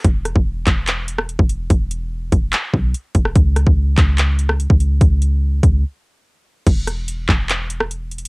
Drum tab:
CC |------------------------------------------------|------------------------------------------------|------------------------------------------------|------------------------------------------------|
HH |x-----x-----------x-----x-----x-----x-----x-----|x-----x-----------x-----x-----------x-----x-----|x-----x-----------x-----x-----x-----x-----x-----|x-----x-----------x-----------------------------|
CP |------------------x-----x-----------------------|------------------------x-----------------------|------------------x-----x-----------------------|------------------------------------------------|
SD |------r--------------------------r--------------|---------------------------------------------r--|------r--------------------------r--------------|------------------------------------------------|
BD |o--------o--------o--------------------o--------|o-----------------o-----------o-----------o-----|o--------o--------o--------------------o--------|o-----------------o-----------------------------|

CC |x-----------------------------------------------|
HH |x-----x-----x-----------x-----x-----x-----x-x---|
CP |------------------x-----x-----------------------|
SD |------r--------------------------r--------------|
BD |o-----------------o-----------------------------|